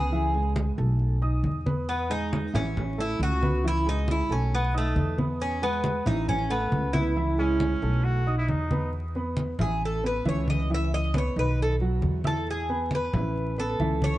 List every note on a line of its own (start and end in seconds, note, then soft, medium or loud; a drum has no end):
0.00 0.71 C#2 loud
0.00 0.52 G#4 loud
0.12 0.30 E3 medium
0.12 0.30 E4 medium
0.12 0.31 E5 medium
0.12 high conga soft
0.34 0.70 G#3 medium
0.34 0.70 G#4 medium
0.34 0.70 G#5 medium
0.34 high conga soft
0.56 high conga medium
0.78 1.40 B1 loud
0.78 1.14 A3 medium
0.78 1.14 A4 medium
0.78 1.14 A5 medium
0.78 high conga soft
0.99 high conga soft
1.22 1.58 D#4 medium
1.22 1.58 D#5 medium
1.22 1.58 D#6 medium
1.22 high conga soft
1.43 2.47 E2 loud
1.43 high conga medium
1.66 2.02 B3 medium
1.66 2.02 B4 medium
1.66 2.02 B5 medium
1.66 high conga loud
1.89 2.11 B3 medium
1.89 high conga soft
2.10 2.46 G#3 medium
2.10 2.55 D#4 loud
2.10 2.46 G#4 medium
2.10 2.46 G#5 medium
2.10 high conga soft
2.33 high conga loud
2.54 3.16 A1 medium
2.54 2.90 E3 medium
2.54 3.00 C#4 loud
2.54 2.90 E4 medium
2.54 2.90 E5 medium
2.54 high conga soft
2.54 low conga medium
2.77 high conga soft
2.77 low conga medium
2.98 3.34 A3 medium
2.98 3.20 E4 loud
2.98 3.34 A4 medium
2.98 3.34 A5 medium
2.98 high conga soft
3.19 4.23 C#2 loud
3.19 3.67 F#4 loud
3.19 high conga medium
3.42 3.60 B3 medium
3.42 3.60 B4 medium
3.42 3.60 B5 medium
3.42 high conga loud
3.64 3.82 E3 medium
3.64 3.82 E4 medium
3.64 3.86 E4 loud
3.64 3.82 E5 medium
3.64 high conga soft
3.86 4.22 G#3 medium
3.86 4.10 D#4 loud
3.86 4.22 G#4 medium
3.86 4.22 G#5 medium
3.86 high conga soft
4.08 4.32 E4 medium
4.08 high conga medium
4.29 4.92 B1 medium
4.29 4.66 A3 medium
4.29 4.54 C#4 medium
4.29 4.66 A4 medium
4.29 4.66 A5 medium
4.29 high conga soft
4.52 4.74 B3 loud
4.52 high conga soft
4.74 5.17 A3 medium
4.74 5.10 D#4 medium
4.74 5.10 D#5 medium
4.74 5.10 D#6 medium
4.74 high conga soft
4.96 6.00 E2 loud
4.96 high conga medium
5.18 5.54 B3 medium
5.18 5.54 B4 medium
5.18 5.54 B5 medium
5.18 high conga loud
5.40 5.63 C#4 loud
5.40 high conga soft
5.62 5.98 G#3 medium
5.62 6.04 B3 medium
5.62 5.98 G#4 medium
5.62 5.99 G#5 medium
5.62 high conga soft
5.84 high conga medium
6.06 6.68 A1 loud
6.06 6.42 E3 medium
6.06 6.29 D#4 loud
6.06 6.42 E4 medium
6.06 6.43 E5 medium
6.06 high conga soft
6.06 low conga medium
6.29 6.51 C#4 loud
6.29 high conga soft
6.29 low conga medium
6.50 6.86 A3 medium
6.50 6.96 B3 loud
6.50 6.86 A4 medium
6.50 6.87 A5 medium
6.50 high conga soft
6.72 7.76 C#2 loud
6.72 high conga medium
6.93 7.12 B3 medium
6.93 7.56 E4 loud
6.93 7.12 B4 medium
6.93 7.13 B5 medium
6.93 high conga loud
7.16 7.34 E3 medium
7.16 7.35 E4 medium
7.16 7.35 E5 medium
7.16 high conga soft
7.38 7.74 G#3 medium
7.38 8.06 C#4 loud
7.38 7.75 G#4 medium
7.38 7.75 G#5 medium
7.38 high conga soft
7.60 high conga medium
7.82 8.45 B1 loud
7.82 8.19 A3 medium
7.82 8.19 A4 medium
7.82 8.19 A5 medium
7.82 high conga soft
8.04 8.37 F#4 loud
8.04 high conga soft
8.27 8.63 D#4 medium
8.27 8.63 D#5 medium
8.27 8.63 D#6 medium
8.27 high conga soft
8.38 8.51 E4 medium
8.49 9.53 E2 medium
8.49 8.93 D#4 medium
8.49 high conga medium
8.71 8.89 B3 medium
8.71 8.89 B4 medium
8.71 8.89 B5 medium
8.71 high conga loud
8.93 high conga soft
9.15 9.52 B3 medium
9.15 9.52 B4 medium
9.15 9.52 B5 medium
9.15 high conga soft
9.37 high conga medium
9.59 10.22 A1 medium
9.59 9.96 E3 medium
9.59 9.96 E4 medium
9.59 9.82 G#4 medium
9.59 9.96 E5 medium
9.59 high conga soft
9.59 low conga medium
9.81 high conga soft
9.85 10.05 A4 medium
10.03 10.22 B3 medium
10.03 10.22 B4 medium
10.03 10.26 B4 medium
10.03 10.22 B5 medium
10.03 high conga soft
10.25 11.30 C#2 loud
10.25 10.62 E3 medium
10.25 10.62 E4 medium
10.25 10.49 C#5 medium
10.25 10.62 E5 loud
10.25 high conga medium
10.48 10.70 D#5 medium
10.48 high conga medium
10.70 11.06 E3 medium
10.70 11.07 E4 medium
10.70 11.07 E5 medium
10.70 high conga soft
10.74 10.94 E5 loud
10.93 11.15 D#5 loud
10.93 high conga soft
11.14 11.32 B3 medium
11.14 11.32 B4 medium
11.14 11.33 B5 medium
11.14 high conga loud
11.18 11.38 C#5 medium
11.36 11.99 B1 medium
11.36 11.73 D#3 medium
11.36 11.73 D#4 medium
11.36 11.59 B4 medium
11.36 11.73 D#5 medium
11.36 high conga soft
11.58 high conga soft
11.62 11.74 A4 medium
11.80 12.17 F#3 medium
11.80 12.17 F#4 medium
11.80 12.17 F#5 medium
11.80 high conga soft
12.02 13.07 E2 loud
12.02 high conga medium
12.24 12.61 E4 medium
12.24 12.47 A4 loud
12.24 12.61 E5 medium
12.24 12.61 E6 medium
12.24 high conga loud
12.47 12.90 G#4 medium
12.47 high conga soft
12.69 13.06 B3 medium
12.69 13.06 B4 medium
12.69 13.06 B5 medium
12.69 high conga soft
12.91 high conga medium
12.95 13.56 B4 medium
13.14 13.76 A1 loud
13.14 13.50 E3 medium
13.14 13.50 E4 medium
13.14 13.50 E5 medium
13.14 high conga soft
13.14 low conga medium
13.36 high conga soft
13.58 13.76 B3 medium
13.58 14.18 A4 medium
13.58 13.76 B4 medium
13.58 13.76 B5 medium
13.58 high conga soft
13.80 14.18 C#2 loud
13.80 14.16 E3 medium
13.80 14.16 E4 medium
13.80 14.17 E5 medium
13.80 high conga medium
14.02 14.18 C#5 loud
14.02 high conga medium